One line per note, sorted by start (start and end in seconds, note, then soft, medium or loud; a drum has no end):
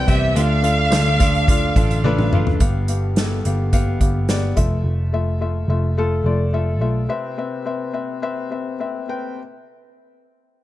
0.00 0.38 C3 medium
0.00 0.07 C4 loud
0.00 0.07 G4 medium
0.00 0.07 B4 medium
0.00 0.38 D5 loud
0.00 0.08 E5 loud
0.00 0.38 G5 loud
0.07 0.34 C2 medium
0.07 0.35 E3 medium
0.07 0.36 G3 medium
0.07 0.36 B3 medium
0.07 0.29 C4 medium
0.07 0.36 E4 medium
0.07 0.29 G4 medium
0.07 0.29 B4 medium
0.07 0.30 E5 medium
0.07 0.37 E5 medium
0.07 kick medium
0.07 closed hi-hat medium
0.35 0.88 D2 loud
0.35 1.19 D3 medium
0.35 1.16 D3 medium
0.35 1.06 A3 medium
0.35 0.57 D4 medium
0.35 1.07 D4 medium
0.35 0.58 F4 medium
0.35 1.06 F4 loud
0.35 0.58 A4 medium
0.35 0.58 F5 loud
0.35 2.33 F5 loud
0.35 closed hi-hat loud
0.63 0.85 D4 medium
0.63 0.85 F4 medium
0.63 0.85 A4 medium
0.63 0.86 F5 medium
0.63 closed hi-hat medium
0.90 1.72 D2 loud
0.90 1.13 D4 loud
0.90 1.13 F4 medium
0.90 1.13 A4 medium
0.90 1.14 F5 loud
0.90 snare loud
0.90 closed hi-hat medium
1.06 1.20 A3 medium
1.06 1.21 D4 medium
1.06 1.20 F4 medium
1.19 1.76 D3 medium
1.19 1.75 A3 medium
1.19 1.42 D4 medium
1.19 1.77 D4 medium
1.19 1.41 F4 medium
1.19 1.78 F4 medium
1.19 1.42 A4 medium
1.19 1.42 F5 loud
1.19 kick medium
1.19 closed hi-hat medium
1.35 closed hi-hat soft
1.48 1.70 D4 medium
1.48 1.70 F4 medium
1.48 1.70 A4 medium
1.48 1.70 F5 loud
1.48 kick medium
1.48 closed hi-hat loud
1.76 2.56 A1 medium
1.76 2.03 D3 medium
1.76 2.04 A3 medium
1.76 1.98 D4 medium
1.76 2.05 D4 medium
1.76 1.98 F4 medium
1.76 2.05 F4 medium
1.76 1.98 A4 medium
1.76 1.98 F5 medium
1.76 kick loud
1.76 closed hi-hat medium
1.91 closed hi-hat medium
2.04 2.31 D3 medium
2.04 2.33 A3 medium
2.04 2.26 D4 loud
2.04 2.33 D4 medium
2.04 2.26 F4 loud
2.04 2.33 F4 medium
2.04 2.26 A4 loud
2.04 2.27 B4 loud
2.04 high tom medium
2.19 mid tom medium
2.33 2.60 D3 medium
2.33 2.61 A3 medium
2.33 2.54 D4 medium
2.33 2.62 D4 medium
2.33 2.54 F4 medium
2.33 2.62 F4 medium
2.33 2.54 A4 medium
2.33 2.55 F5 loud
2.33 mid tom loud
2.47 floor tom medium
2.60 3.40 G1 medium
2.60 3.41 G2 medium
2.60 2.82 B3 medium
2.60 2.82 G4 medium
2.60 2.82 F5 medium
2.60 kick loud
2.60 closed hi-hat medium
2.88 3.10 B3 medium
2.88 3.10 G4 medium
2.88 3.10 F5 medium
2.88 closed hi-hat medium
3.16 3.38 B3 medium
3.16 3.39 G4 medium
3.16 3.39 A4 medium
3.16 snare loud
3.16 closed hi-hat medium
3.45 3.97 G1 medium
3.45 3.66 B3 medium
3.45 3.67 G4 medium
3.45 3.67 F5 medium
3.45 closed hi-hat medium
3.73 3.94 B3 loud
3.73 3.95 G4 medium
3.73 3.95 F5 loud
3.73 kick medium
3.73 closed hi-hat medium
4.00 4.53 G1 medium
4.00 4.22 B3 medium
4.00 4.22 G4 medium
4.00 4.23 F5 medium
4.00 kick medium
4.00 closed hi-hat medium
4.29 4.50 B3 medium
4.29 4.51 G4 medium
4.29 4.51 D5 medium
4.29 snare medium
4.29 closed hi-hat medium
4.56 4.83 F1 medium
4.56 5.01 A3 medium
4.56 5.01 F4 medium
4.56 5.02 E5 medium
4.56 kick medium
4.56 closed hi-hat medium
4.84 5.65 F1 medium
5.13 5.34 A3 medium
5.13 5.35 F4 medium
5.13 5.35 E5 medium
5.40 5.62 A3 medium
5.40 5.62 F4 medium
5.40 5.63 E5 medium
5.68 6.21 F1 medium
5.68 5.91 A3 medium
5.68 5.91 F4 medium
5.68 5.91 E5 medium
5.97 6.19 A3 medium
5.97 6.19 F4 medium
5.97 6.19 A4 loud
6.24 6.81 F1 medium
6.24 6.47 A3 medium
6.24 6.47 F4 medium
6.24 6.47 D5 medium
6.53 6.75 A3 medium
6.53 6.75 F4 medium
6.53 6.75 E5 medium
6.81 7.07 B1 medium
6.81 7.02 A3 medium
6.81 7.03 F4 medium
6.81 7.03 E5 medium
7.09 7.90 C3 medium
7.09 7.31 C4 medium
7.09 7.31 B4 medium
7.09 7.31 E5 medium
7.38 7.59 C4 medium
7.38 7.59 B4 medium
7.38 7.60 E5 medium
7.65 7.87 C4 medium
7.65 7.87 B4 medium
7.65 7.88 E5 medium
7.93 8.15 C4 medium
7.93 8.15 B4 medium
7.93 8.16 E5 medium
8.22 8.44 C4 medium
8.22 8.44 B4 medium
8.22 8.45 E5 loud
8.51 8.73 C4 medium
8.51 8.73 B4 medium
8.51 8.73 E5 medium
8.80 9.02 C4 medium
8.80 9.02 B4 medium
8.80 9.03 E5 medium
9.08 9.31 C4 medium
9.08 9.32 B4 medium
9.08 9.32 G5 medium